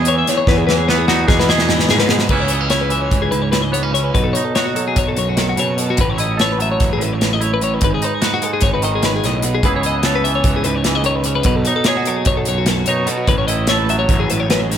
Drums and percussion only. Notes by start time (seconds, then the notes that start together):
0.05 closed hi-hat
0.27 snare, closed hi-hat
0.47 kick, snare
0.69 snare
0.89 snare
1.08 snare
1.28 kick, snare
1.40 snare
1.49 snare
1.58 snare
1.69 snare
1.79 snare
1.89 snare
1.99 snare
2.09 snare
2.19 snare
2.29 kick, crash
2.48 closed hi-hat
2.70 snare, closed hi-hat
2.90 closed hi-hat
3.11 kick, closed hi-hat
3.32 closed hi-hat
3.53 snare, closed hi-hat
3.74 closed hi-hat
3.95 closed hi-hat
4.15 kick, closed hi-hat
4.35 closed hi-hat
4.55 snare, closed hi-hat
4.76 closed hi-hat
4.96 kick, closed hi-hat
5.17 closed hi-hat
5.37 snare, closed hi-hat
5.57 closed hi-hat
5.78 closed hi-hat
5.97 kick, closed hi-hat
6.18 closed hi-hat
6.39 snare, closed hi-hat
6.60 closed hi-hat
6.80 kick, snare, closed hi-hat
7.01 closed hi-hat
7.21 snare, closed hi-hat
7.41 closed hi-hat
7.61 closed hi-hat
7.81 kick, closed hi-hat
8.02 closed hi-hat
8.22 snare, closed hi-hat
8.42 closed hi-hat
8.61 kick, snare, closed hi-hat
8.82 closed hi-hat
9.03 snare, closed hi-hat
9.24 snare, closed hi-hat
9.42 closed hi-hat
9.63 kick, closed hi-hat
9.83 closed hi-hat
10.03 snare, closed hi-hat
10.25 closed hi-hat
10.44 kick, closed hi-hat
10.64 closed hi-hat
10.84 snare, closed hi-hat
11.04 closed hi-hat
11.24 closed hi-hat
11.43 kick, closed hi-hat
11.65 closed hi-hat
11.84 snare, closed hi-hat
12.05 closed hi-hat
12.25 kick, closed hi-hat
12.45 closed hi-hat
12.66 snare, closed hi-hat
12.86 closed hi-hat
13.07 closed hi-hat
13.27 kick, closed hi-hat
13.48 closed hi-hat
13.67 snare, closed hi-hat
13.89 closed hi-hat
14.09 kick, closed hi-hat
14.30 closed hi-hat
14.50 snare, closed hi-hat
14.72 snare, closed hi-hat